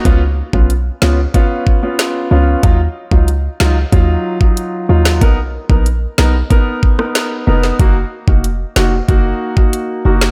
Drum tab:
HH |x---x---x---x---|x---x---x---x---|x---x---x---x---|x---x---x---x---|
SD |------o-----o---|------o--------o|------o----ro--o|------o--------o|
BD |o--o----o-o-----|o--o----o--o----|o--o----o-o-----|o--o----o--o----|